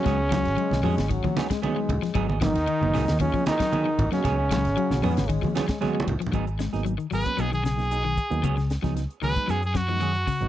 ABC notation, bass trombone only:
X:1
M:4/4
L:1/16
Q:1/4=114
K:G#dor
V:1 name="Bass trombone" clef=bass
z2 F,2 G,2 G,2 F,3 G, G,4- | G, z12 z3 | z4 F,2 B,2 G,2 G,2 G,4 | z16 |
z16 |]